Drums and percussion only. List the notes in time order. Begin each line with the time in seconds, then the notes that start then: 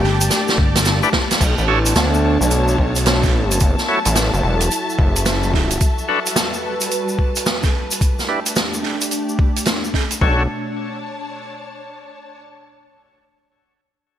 0.04 snare
0.21 closed hi-hat, shaker
0.30 snare, closed hi-hat, shaker
0.48 snare, shaker
0.58 kick
0.75 snare, closed hi-hat, shaker
0.85 snare, closed hi-hat, shaker
1.03 shaker
1.13 kick, snare
1.31 snare, closed hi-hat, shaker
1.41 kick, closed hi-hat, crash, shaker
1.58 shaker
1.86 closed hi-hat, shaker
1.95 snare, closed hi-hat, shaker
2.14 shaker
2.42 shaker
2.51 closed hi-hat, shaker
2.68 shaker
2.78 kick
2.95 closed hi-hat, shaker
3.06 snare, closed hi-hat, shaker
3.23 kick, snare, shaker
3.51 closed hi-hat, shaker
3.60 kick, closed hi-hat, shaker
3.78 snare, shaker
4.05 closed hi-hat, shaker
4.15 snare, closed hi-hat, shaker
4.34 shaker
4.60 closed hi-hat, shaker
4.71 closed hi-hat, shaker
4.89 shaker
4.99 kick
5.16 closed hi-hat, shaker
5.26 snare, closed hi-hat, shaker
5.43 shaker
5.54 kick, snare
5.71 closed hi-hat, shaker
5.80 kick, closed hi-hat, shaker
5.98 shaker
6.26 closed hi-hat, shaker
6.36 snare, closed hi-hat, shaker
6.54 shaker
6.81 closed hi-hat, shaker
6.91 closed hi-hat, shaker
7.08 shaker
7.19 kick
7.36 closed hi-hat, shaker
7.46 snare, closed hi-hat, shaker
7.63 kick, snare, shaker
7.91 closed hi-hat, shaker
8.01 kick, closed hi-hat, shaker
8.19 snare, shaker
8.46 closed hi-hat, shaker
8.56 snare, closed hi-hat, shaker
8.74 shaker
8.83 snare
9.01 closed hi-hat, shaker
9.11 closed hi-hat, shaker
9.29 shaker
9.39 kick
9.56 closed hi-hat, shaker
9.65 snare, closed hi-hat, shaker
9.84 shaker
9.94 kick, snare
10.11 closed hi-hat, shaker
10.21 kick